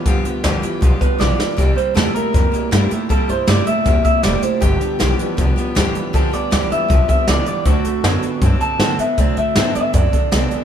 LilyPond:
<<
  \new Staff \with { instrumentName = "Clean electric guitar" } { \time 4/4 \key g \mixolydian \tempo 4 = 158 r2 r8 b'8 d''4~ | d''8 c''8 a'8 bes'2 r8 | a'8 c''8 d''8 e''4 e''8 d''8 c''8 | g'2 r2 |
a'8 d''8 d''8 e''4 e''8 d''8 d''8 | fis'2 r8 a''4 e''8 | d''8 e''4 e''8 d''2 | }
  \new Staff \with { instrumentName = "Steel-string acoustic guitar" } { \time 4/4 \key g \mixolydian <g, d f b f' g'>8 <f b f' g'>8 <g, d f b f' g'>8 <f b f' g'>8 <f b f' g'>8 <f b f' g'>8 <g, d f b f' g'>8 <f b f' g'>8 | <c g bes e' g'>8 <bes e' g'>8 <c g bes e' g'>8 <bes e' g'>8 <g bes e' g'>8 <bes e' g'>8 <c g bes e' g'>8 <bes e' g'>8 | <c g bes e' g'>8 <bes e' g'>8 <c g bes e' g'>8 <bes g'>8 <g bes e' g'>8 <bes e' g'>8 <c g bes e' g'>8 <bes e' g'>8 | <g, d f b d' g'>8 <f b d' g'>8 <g, d f b d' g'>8 <f b d' g'>8 <f b d' g'>8 <f b d' g'>8 <g, d f b d' g'>8 <f b d' g'>8 |
<g, d f b d' g'>8 <f b d' g'>8 <g, d f b d' g'>8 <f b d' g'>8 <f b d' g'>8 <f b d' g'>8 <g, d f b d' g'>8 <f b d' g'>8 | <d fis c' d' a'>8 <c' d' a'>8 <d fis c' d' a'>8 <c' d' a'>8 <fis c' d' a'>8 <c' d' a'>8 <d fis c' d' a'>8 <c' d' a'>8 | <d fis c' d' a'>8 <d' a'>8 <d fis c' d' a'>8 <c' d' a'>8 <fis c' d' a'>8 <c' d' a'>8 <d fis c' d' a'>8 <c' d' a'>8 | }
  \new Staff \with { instrumentName = "Clean electric guitar" } { \clef bass \time 4/4 \key g \mixolydian <g, d>8 <g, d>8 <g, e>8 <g, e>8 <g, f>8 <g, f>8 <g, e>8 <g, e>8 | <c g>8 <c g>8 <c a>8 <c a>8 <c bes>8 <c bes>8 <c a>8 <c a>8 | <c g>8 <c g>8 <c a>8 <c a>8 <c bes>8 <c bes>8 <c a>8 <c a>8 | <g, d>8 <g, d>8 <g, e>8 <g, e>8 <g, f>8 <g, f>8 <g, e>8 <g, e>8 |
<g, d>8 <g, d>8 <g, e>8 <g, e>8 <g, f>8 <g, f>8 <g, e>8 <g, e>8 | <d a>8 <d a>8 <d b>8 <d b>8 <d c'>8 <d c'>8 <d b>8 <d b>8 | <d a>8 <d a>8 <d b>8 <d b>8 <d c'>8 <d c'>8 <d b>8 <d b>8 | }
  \new Staff \with { instrumentName = "Upright bass" } { \clef bass \time 4/4 \key g \mixolydian f,8 d,8 d,8 r8 b,,8 r8 b,,8 r8 | c,8 r8 e,8 r8 f,8 r8 g,8 r8 | bes,8 g,8 g,8 r8 e,8 r8 f,,8 r8 | g,,8 r8 b,,8 r8 c,8 r8 d,8 r8 |
f,8 d,8 d,8 r8 b,,8 r8 cis,8 r8 | d,8 r8 fis,8 r8 g,8 r8 a,8 r8 | c8 a,8 a,8 r8 fis,8 r8 c,8 r8 | }
  \new DrumStaff \with { instrumentName = "Drums" } \drummode { \time 4/4 <hh bd>8 hh8 <hh sn>8 hh8 <hh bd>8 <hh bd>8 sn8 sn8 | <hh bd>8 hh8 <hh sn>8 hh8 <hh bd>8 hh8 <hh sn>8 hh8 | <hh bd>8 hh8 <hh sn>8 hh8 <hh bd>8 <hh bd>8 <hh sn>8 hh8 | <hh bd>8 hh8 <hh sn>8 hh8 <hh bd>8 hh8 <hh sn>8 hh8 |
<hh bd>8 hh8 <hh sn>8 hh8 <hh bd>8 <hh bd>8 <hh sn>8 hh8 | <hh bd>8 hh8 <hh sn>8 hh8 <hh bd>8 hh8 <hh sn>8 hh8 | <hh bd>8 hh8 <hh sn>8 hh8 <hh bd>8 <hh bd>8 <hh sn>8 hh8 | }
>>